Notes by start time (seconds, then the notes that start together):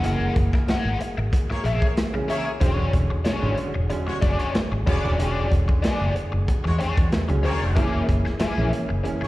Already playing: G#3 A#3 G#4
0.02 F#1 C#3 E3 G#3 A#3 F#4 G#4 A#4 F#5, closed hi-hat
0.36 F#1, kick, closed hi-hat
0.53 muted overdriven electric guitar stroke, kick, snare
0.68 G#4 A#4 F#5, snare, closed hi-hat
0.85 G#1
1.01 muted overdriven electric guitar stroke, closed hi-hat
1.18 G#1, muted overdriven electric guitar stroke
1.33 kick, closed hi-hat
1.50 A#3 G#4 C#5, muted fingered electric bass stroke, muted overdriven electric guitar stroke, snare
1.64 A#1 G#4 A#4 E5, closed hi-hat
1.81 A#3 G#4 C#5, muted overdriven electric guitar stroke, kick
1.97 snare, closed hi-hat
2.13 C#3 E3 G#3 C#4, muted overdriven electric guitar stroke
2.28 A#3 G#4 A#4 C#5 E5, closed hi-hat
2.45 muted overdriven electric guitar stroke
2.60 E1 D3 F#3 G#3 C#4 G4 C5, kick, closed hi-hat
2.73 D4 G#4 C#5
2.93 E1, kick, closed hi-hat
3.10 muted overdriven electric guitar stroke
3.25 D4 G#4 C#5, snare, closed hi-hat
3.42 G#1 D3 F#3 G#3 C#4
3.58 muted overdriven electric guitar stroke, closed hi-hat
3.74 E1, muted overdriven electric guitar stroke
3.90 D3 F#3 G#3 C#4, muted overdriven electric guitar stroke, closed hi-hat
4.07 G#3 F#4 C#5, muted overdriven electric guitar stroke, muted fingered electric bass stroke, snare
4.21 F#1 D4 G#4 D5, kick, closed hi-hat
4.39 G#3 D4 F#4 G#4 C#5, closed hi-hat
4.55 muted overdriven electric guitar stroke, snare, closed hi-hat
4.72 G#1, muted overdriven electric guitar stroke
4.86 E1 D3 F#3 G#3 B3 C#4 D4 G#4 C#5 D5, kick, closed hi-hat
5.03 D#1 D3 F#3 G#3 C#4 D4 G#4 D5
5.19 E1 D3 F#3 G#3 C#4 G4 C#5, closed hi-hat
5.32 D4 G#4 D5
5.52 E1, kick, closed hi-hat
5.68 muted overdriven electric guitar stroke, kick
5.82 D4 G#4 D5, snare, closed hi-hat
6.01 F#1
6.15 muted overdriven electric guitar stroke, closed hi-hat
6.32 F#1, muted overdriven electric guitar stroke
6.48 kick, closed hi-hat
6.64 E2 G#3 F#4 C#5, muted overdriven electric guitar stroke, snare
6.79 D4 G#4 C#5, closed hi-hat
6.97 E2 G#3 F#4 C#5, muted overdriven electric guitar stroke, kick, closed hi-hat
7.12 snare, closed hi-hat
7.28 C#2 D3 F#3 G#3 C#4, muted overdriven electric guitar stroke, closed hi-hat
7.43 D2 A#3 D4 G#4 C#5, open hi-hat
7.61 F1, muted overdriven electric guitar stroke
7.75 F#1 E3 G#3 A#3 C#4 E4 G#4, kick, closed hi-hat
8.09 F#1, kick, closed hi-hat
8.25 muted overdriven electric guitar stroke, snare
8.40 A#3 E4 G#4, snare, closed hi-hat
8.56 A#1 E3 G#3 A#3 C#4
8.72 muted overdriven electric guitar stroke, closed hi-hat
8.89 F#1, muted overdriven electric guitar stroke
9.04 E3 G#3 A#3 C#4, muted overdriven electric guitar stroke, closed hi-hat
9.21 A#3 G#4 C#5, muted overdriven electric guitar stroke, muted fingered electric bass stroke, snare